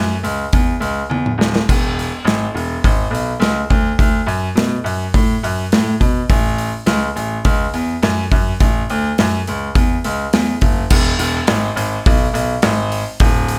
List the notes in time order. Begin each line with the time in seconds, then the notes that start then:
Already playing: F#2
0.23 C#2, open hi-hat
0.53 E2, kick, open hi-hat
0.80 C#2, open hi-hat
1.10 E2, high tom
1.26 mid tom
1.38 D1, snare
1.56 snare
1.69 E1, kick, open hi-hat, crash
1.99 open hi-hat
2.25 G#1, snare, open hi-hat
2.55 E1, open hi-hat
2.84 G#1, kick, open hi-hat
3.10 B1
3.15 open hi-hat
3.40 C#2, snare, open hi-hat
3.70 D2, kick, open hi-hat
3.99 D2, kick, open hi-hat
4.26 F#2, open hi-hat
4.55 B2, snare, open hi-hat
4.84 F#2, open hi-hat
5.14 A2, kick, open hi-hat
5.43 F#2, open hi-hat
5.72 A2, snare, open hi-hat
6.00 B2, kick, open hi-hat
6.30 A1, kick, open hi-hat
6.58 open hi-hat
6.86 C#2, snare, open hi-hat
7.16 A1, open hi-hat
7.45 C#2, kick, open hi-hat
7.74 E2, open hi-hat
8.02 F#2, snare, open hi-hat
8.31 F#2, kick, open hi-hat
8.60 A1, kick, open hi-hat
8.90 D2, open hi-hat
9.18 F#2, snare, open hi-hat
9.47 C#2, open hi-hat
9.75 E2, kick, open hi-hat
10.04 C#2, open hi-hat
10.33 E2, snare, open hi-hat
10.61 F#1, kick, open hi-hat
10.90 E1, kick, crash
11.19 E1, open hi-hat
11.47 G#1, snare, open hi-hat
11.76 G#1, open hi-hat
12.06 B1, kick, open hi-hat
12.33 B1, open hi-hat
12.62 G#1, snare, open hi-hat
12.92 open hi-hat
13.20 D1, kick, open hi-hat
13.48 open hi-hat